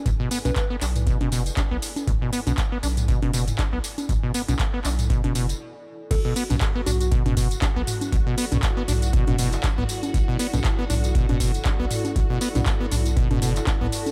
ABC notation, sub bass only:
X:1
M:4/4
L:1/16
Q:"Swing 16ths" 1/4=119
K:Bdor
V:1 name="Sub bass" clef=bass
B,,, z2 B,,, z2 B,,,2 z F,,,2 z2 B,,, z2 | B,,, z2 B,,, z2 B,,,2 z F,,,2 z2 B,,, z2 | B,,, z2 B,,, z2 B,,,2 z F,,,2 z4 z | B,,, z2 B,,, z2 B,,,2 z F,,,2 z2 B,,, z2 |
B,,, z2 B,,, z2 B,,,2 z F,,,2 z2 B,,, z2 | B,,, z2 B,,, z2 B,,,2 z F,,,2 z2 B,,, z2 | B,,, z2 B,,, z2 B,,,2 z F,,,2 z2 B,,, z2 |]